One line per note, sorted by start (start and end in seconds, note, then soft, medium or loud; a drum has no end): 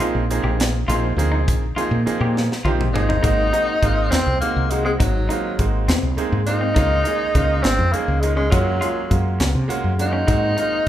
0.00 0.22 F3 medium
0.00 0.22 A#3 medium
0.00 0.22 C4 medium
0.00 0.23 D#4 medium
0.00 0.15 F4 medium
0.00 0.23 G#4 medium
0.00 closed hi-hat medium
0.15 0.43 A#1 medium
0.30 0.74 F3 medium
0.30 0.74 A#3 medium
0.30 0.74 C4 medium
0.30 0.74 D#4 medium
0.30 0.74 G#4 medium
0.30 closed hi-hat medium
0.43 0.85 A#1 medium
0.43 0.60 G4 medium
0.60 snare loud
0.60 closed hi-hat medium
0.88 1.16 A#1 medium
0.88 1.10 F3 medium
0.88 1.10 A#3 medium
0.88 1.11 C4 medium
0.88 1.11 D#4 medium
0.88 1.04 F4 medium
0.88 1.11 G#4 medium
0.88 closed hi-hat medium
1.16 1.48 D2 medium
1.16 1.61 F3 medium
1.16 1.61 A#3 medium
1.16 1.62 C4 medium
1.16 1.62 D#4 medium
1.16 1.62 G#4 medium
1.16 closed hi-hat medium
1.32 1.40 D#4 medium
1.48 1.75 A#1 medium
1.48 kick medium
1.48 closed hi-hat medium
1.76 1.98 F3 medium
1.76 1.99 A#3 medium
1.76 1.99 C4 medium
1.76 1.99 D#4 medium
1.76 1.92 F4 medium
1.76 1.99 G#4 medium
1.76 muted fretless electric bass stroke soft
1.76 closed hi-hat medium
1.91 2.05 A#2 medium
2.06 2.49 F3 medium
2.06 2.50 A#3 medium
2.06 2.50 C4 medium
2.06 2.50 D#4 medium
2.06 2.50 G#4 medium
2.06 muted fretless electric bass stroke soft
2.06 closed hi-hat medium
2.20 2.48 A#2 medium
2.20 2.37 G4 medium
2.37 snare medium
2.52 snare medium
2.64 2.94 A#1 medium
2.64 2.87 F3 medium
2.64 2.87 A#3 medium
2.64 2.87 C4 medium
2.64 2.87 D#4 medium
2.64 2.80 F4 medium
2.64 2.87 G4 medium
2.64 high tom medium
2.81 mid tom medium
2.93 3.22 G#1 medium
2.93 3.23 F3 medium
2.93 3.21 A#3 medium
2.93 3.22 C4 medium
2.93 4.12 D#4 loud
2.93 3.22 D#4 medium
2.93 3.24 G#4 medium
2.93 mid tom medium
3.09 3.17 D#4 medium
3.09 floor tom medium
3.22 3.51 G#1 medium
3.22 3.46 G#3 medium
3.22 3.47 A#3 medium
3.22 3.47 C4 medium
3.22 3.39 D#4 medium
3.22 3.47 D#4 medium
3.22 3.47 F#4 medium
3.22 kick medium
3.22 closed hi-hat medium
3.52 3.74 G#3 soft
3.52 3.74 A#3 medium
3.52 3.75 C4 medium
3.52 3.75 D#4 medium
3.52 3.69 D#4 medium
3.52 3.74 F#4 medium
3.52 closed hi-hat soft
3.82 4.10 G#1 medium
3.82 4.26 G#3 medium
3.82 4.26 A#3 medium
3.82 4.26 C4 medium
3.82 4.26 D#4 medium
3.82 4.26 F4 medium
3.82 kick medium
3.82 closed hi-hat medium
4.10 4.25 D#2 medium
4.10 4.40 C4 medium
4.10 4.27 C4 medium
4.10 snare loud
4.10 closed hi-hat medium
4.26 4.40 C2 medium
4.40 4.63 G#3 medium
4.40 4.72 A#3 medium
4.40 4.63 A#3 soft
4.40 4.63 C4 medium
4.40 4.63 D#4 soft
4.40 4.64 F#4 medium
4.40 muted fretless electric bass stroke soft
4.40 closed hi-hat medium
4.56 4.97 C2 medium
4.70 5.14 G#3 soft
4.70 4.85 G#3 medium
4.70 5.14 A#3 medium
4.70 5.14 C4 medium
4.70 5.14 D#4 medium
4.70 5.15 F#4 medium
4.70 closed hi-hat medium
4.85 4.92 G#3 medium
4.85 4.93 C4 medium
4.99 5.27 G#1 medium
4.99 5.62 F#3 medium
4.99 5.15 D#4 medium
4.99 kick medium
4.99 closed hi-hat medium
5.29 5.51 G#3 medium
5.29 5.51 A#3 medium
5.29 5.51 C4 medium
5.29 5.45 D#4 medium
5.29 5.52 D#4 medium
5.29 5.52 F4 medium
5.29 closed hi-hat medium
5.59 5.86 G#1 medium
5.59 6.02 G#3 medium
5.59 6.02 A#3 medium
5.59 6.02 C4 soft
5.59 6.03 D#4 medium
5.59 6.03 F#4 medium
5.59 kick medium
5.59 closed hi-hat soft
5.88 6.02 D#2 medium
5.88 6.04 C4 medium
5.88 snare loud
5.88 closed hi-hat medium
6.02 6.16 C2 medium
6.17 6.39 G#3 medium
6.17 6.39 A#3 medium
6.17 6.39 C4 medium
6.17 6.39 D#4 medium
6.17 6.40 G#4 medium
6.17 muted fretless electric bass stroke soft
6.17 closed hi-hat soft
6.32 6.73 G#2 medium
6.47 6.75 G#3 medium
6.47 6.75 A#3 medium
6.47 6.77 C4 medium
6.47 7.64 D#4 loud
6.47 6.75 D#4 medium
6.47 6.76 F4 medium
6.47 closed hi-hat medium
6.61 6.69 C4 medium
6.75 7.04 C#2 medium
6.75 7.00 G#3 medium
6.75 7.00 A#3 medium
6.75 7.00 C#4 medium
6.75 6.90 D#4 medium
6.75 7.00 D#4 medium
6.75 7.00 F4 medium
6.75 kick medium
6.75 closed hi-hat medium
7.04 7.27 G#3 medium
7.04 7.28 A#3 medium
7.04 7.28 C#4 medium
7.04 7.20 D#4 medium
7.04 7.28 D#4 soft
7.04 7.28 G#4 medium
7.04 closed hi-hat soft
7.35 7.62 C#2 medium
7.35 7.78 G#3 medium
7.35 7.78 A#3 medium
7.35 7.78 C#4 medium
7.35 7.78 D#4 medium
7.35 7.78 F4 medium
7.35 kick medium
7.35 closed hi-hat soft
7.62 7.78 G#1 medium
7.62 7.94 C4 medium
7.62 7.79 C#4 medium
7.62 snare loud
7.62 closed hi-hat medium
7.79 7.92 F2 medium
7.92 8.15 G#3 medium
7.92 8.22 A#3 medium
7.92 8.15 A#3 medium
7.92 8.15 C#4 medium
7.92 8.16 D#4 medium
7.92 8.16 G#4 medium
7.92 muted fretless electric bass stroke soft
7.92 closed hi-hat medium
8.08 8.49 C#2 medium
8.21 8.35 G#3 medium
8.21 8.51 G#3 medium
8.21 8.51 A#3 medium
8.21 8.51 C#4 medium
8.21 8.52 D#4 medium
8.21 8.51 F4 medium
8.21 closed hi-hat medium
8.36 8.52 G#3 medium
8.36 8.45 C#4 medium
8.50 8.80 F#2 medium
8.50 9.17 F#3 medium
8.50 8.76 G#3 medium
8.50 8.76 A#3 medium
8.50 8.76 C#4 medium
8.50 8.67 F4 medium
8.50 8.76 F4 medium
8.50 8.76 F#4 medium
8.50 kick medium
8.50 closed hi-hat medium
8.81 9.03 G#3 medium
8.81 9.03 A#3 medium
8.81 9.03 C#4 medium
8.81 8.97 F4 medium
8.81 9.03 F4 medium
8.81 9.03 G#4 medium
8.81 closed hi-hat medium
9.10 9.38 F#2 medium
9.10 9.54 G#3 medium
9.10 9.54 A#3 soft
9.10 9.54 C#4 medium
9.10 9.54 F4 medium
9.10 9.54 F#4 medium
9.10 kick medium
9.10 closed hi-hat medium
9.40 9.54 C#2 medium
9.40 9.56 C#4 medium
9.40 snare loud
9.40 closed hi-hat medium
9.55 9.68 C3 medium
9.68 9.90 G#3 medium
9.68 9.91 A#3 medium
9.68 9.91 C#4 medium
9.68 9.91 F4 medium
9.68 9.91 F#4 medium
9.68 muted fretless electric bass stroke soft
9.68 closed hi-hat medium
9.84 10.25 F#2 medium
9.99 10.26 G#3 medium
9.99 10.26 A#3 soft
9.99 10.28 C#4 soft
9.99 10.88 D#4 medium
9.99 10.29 F4 soft
9.99 10.27 F#4 medium
9.99 closed hi-hat medium
10.13 10.21 C#4 medium
10.28 10.55 G#2 medium
10.28 10.51 G#3 medium
10.28 10.51 A#3 medium
10.28 10.52 C4 medium
10.28 10.43 D#4 medium
10.28 10.52 D#4 medium
10.28 10.52 F#4 medium
10.28 kick medium
10.28 closed hi-hat medium
10.57 10.79 G#3 medium
10.57 10.79 A#3 soft
10.57 10.80 C4 soft
10.57 10.73 D#4 medium
10.57 10.80 D#4 medium
10.57 10.80 F4 medium
10.57 closed hi-hat medium